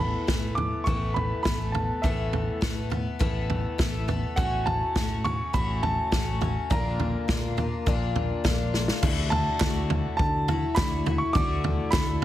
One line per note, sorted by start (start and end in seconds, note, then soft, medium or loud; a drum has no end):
0.00 0.14 A1 medium
0.00 0.28 A2 medium
0.00 0.26 E3 medium
0.00 0.28 A3 medium
0.00 0.29 B3 medium
0.00 0.30 A4 medium
0.00 0.58 B5 loud
0.27 0.73 A2 medium
0.27 0.85 E3 medium
0.27 0.87 A3 medium
0.27 0.87 B3 medium
0.27 0.88 A4 medium
0.27 kick loud
0.27 snare loud
0.27 floor tom medium
0.55 0.86 D6 medium
0.55 floor tom medium
0.84 1.31 A1 medium
0.84 1.45 A2 medium
0.84 1.43 E3 medium
0.84 1.45 A3 medium
0.84 1.45 B3 medium
0.84 1.15 C#6 medium
0.84 kick medium
0.84 floor tom medium
0.88 1.47 A4 medium
1.14 1.41 B5 medium
1.14 floor tom medium
1.43 1.90 A1 medium
1.43 2.03 E3 soft
1.43 2.04 A3 medium
1.43 2.04 B3 medium
1.43 1.74 B5 medium
1.43 kick medium
1.43 snare medium
1.43 floor tom medium
1.47 2.05 A4 medium
1.72 2.03 A5 medium
1.72 floor tom medium
2.02 2.48 A1 medium
2.02 2.62 A2 medium
2.02 2.60 E3 medium
2.02 2.62 A3 medium
2.02 2.62 B3 medium
2.02 2.64 A4 medium
2.02 2.57 E5 medium
2.02 kick medium
2.02 floor tom medium
2.33 floor tom medium
2.61 3.07 A2 medium
2.61 2.91 E3 soft
2.61 2.91 A3 medium
2.61 2.90 B3 medium
2.61 2.89 A4 medium
2.61 kick loud
2.61 snare loud
2.61 floor tom medium
2.90 3.19 A3 soft
2.90 3.20 B3 soft
2.90 3.20 A4 medium
2.90 floor tom medium
3.19 3.65 A1 medium
3.19 3.78 A2 medium
3.19 3.77 E3 medium
3.19 3.78 A3 medium
3.19 3.79 B3 medium
3.19 3.79 A4 medium
3.19 kick loud
3.19 floor tom medium
3.50 floor tom medium
3.78 4.23 A1 medium
3.78 4.08 E3 medium
3.78 4.08 A3 medium
3.78 4.08 B3 medium
3.78 4.07 A4 medium
3.78 kick loud
3.78 snare medium
3.78 floor tom medium
4.08 4.37 A3 soft
4.08 4.38 B3 soft
4.08 4.37 A4 medium
4.08 floor tom medium
4.36 4.82 A1 medium
4.36 4.95 A2 medium
4.36 4.94 F#3 medium
4.36 4.95 A3 medium
4.36 4.96 C#4 medium
4.36 4.96 F#4 medium
4.36 4.67 F#5 medium
4.36 kick loud
4.36 floor tom medium
4.66 5.26 A5 medium
4.66 floor tom medium
4.95 5.40 A2 medium
4.95 5.25 F#3 medium
4.95 5.25 A3 medium
4.95 5.25 C#4 medium
4.95 5.23 F#4 medium
4.95 kick loud
4.95 snare medium
4.95 floor tom medium
5.24 5.54 A3 soft
5.24 5.54 C#4 soft
5.24 5.54 F#4 soft
5.24 5.55 C#6 loud
5.24 floor tom medium
5.53 5.98 A1 medium
5.53 6.12 A2 medium
5.53 6.10 F#3 medium
5.53 6.12 A3 medium
5.53 6.13 C#4 medium
5.53 6.13 F#4 medium
5.53 5.84 B5 medium
5.53 kick loud
5.53 floor tom medium
5.83 6.73 A5 medium
5.83 floor tom medium
6.12 6.57 A1 medium
6.12 6.41 F#3 medium
6.12 6.42 A3 medium
6.12 6.41 C#4 medium
6.12 6.40 F#4 medium
6.12 kick loud
6.12 snare loud
6.12 floor tom medium
6.41 6.71 A3 soft
6.41 6.71 C#4 soft
6.41 6.70 F#4 medium
6.41 floor tom medium
6.70 7.15 A#1 medium
6.70 7.28 A#2 medium
6.70 7.27 D3 medium
6.70 7.28 A#3 medium
6.70 7.29 D4 medium
6.70 7.30 F4 medium
6.70 8.41 A#5 medium
6.70 kick loud
6.70 floor tom medium
7.00 floor tom medium
7.28 7.73 A#2 medium
7.28 7.57 D3 medium
7.28 7.58 A#3 medium
7.28 7.58 D4 medium
7.28 7.56 F4 medium
7.28 kick loud
7.28 snare loud
7.28 floor tom medium
7.57 7.86 A#3 soft
7.57 7.87 D4 soft
7.57 7.86 F4 medium
7.57 floor tom medium
7.86 8.31 A#1 medium
7.86 8.45 A#2 medium
7.86 8.43 D3 medium
7.86 8.44 A#3 medium
7.86 8.45 D4 medium
7.86 8.46 F4 medium
7.86 kick loud
7.86 floor tom medium
8.16 floor tom medium
8.44 8.89 A#1 medium
8.44 9.01 D3 medium
8.44 9.03 A#3 medium
8.44 9.04 D4 medium
8.44 9.04 F4 medium
8.44 kick loud
8.44 snare loud
8.44 floor tom medium
8.74 snare medium
8.88 snare medium
9.03 9.47 D2 medium
9.03 9.59 D3 medium
9.03 9.61 A3 medium
9.03 9.61 E4 loud
9.03 9.63 F#4 medium
9.03 kick loud
9.03 floor tom medium
9.03 crash loud
9.30 10.14 A5 loud
9.30 floor tom medium
9.60 10.05 D2 medium
9.60 10.48 D3 medium
9.60 10.51 A3 medium
9.60 10.49 E4 medium
9.60 10.48 F#4 medium
9.60 kick loud
9.60 snare loud
9.60 clap medium
9.60 floor tom medium
9.90 floor tom medium
10.17 10.63 D3 medium
10.17 10.78 A5 medium
10.17 kick loud
10.17 floor tom medium
10.48 10.77 A3 soft
10.48 10.78 E4 soft
10.48 10.77 F#4 medium
10.48 floor tom medium
10.75 11.21 D2 loud
10.75 11.06 D3 medium
10.75 11.07 A3 medium
10.75 11.21 B5 medium
10.75 kick loud
10.75 snare loud
10.75 clap medium
10.75 floor tom medium
10.80 11.06 E4 medium
10.80 11.05 F#4 medium
11.06 11.34 A3 soft
11.06 11.35 E4 medium
11.06 11.35 F#4 soft
11.06 floor tom medium
11.18 11.34 C#6 medium
11.33 11.79 D2 medium
11.33 11.91 D3 medium
11.33 11.93 A3 medium
11.33 11.93 E4 medium
11.33 11.95 F#4 medium
11.33 11.88 D6 loud
11.33 kick loud
11.33 floor tom medium
11.64 floor tom medium
11.91 12.25 D2 medium
11.91 12.25 D3 medium
11.91 12.25 E4 medium
11.91 12.25 B5 medium
11.91 kick loud
11.91 snare loud
11.91 clap medium
11.91 floor tom medium
11.95 12.25 F#4 medium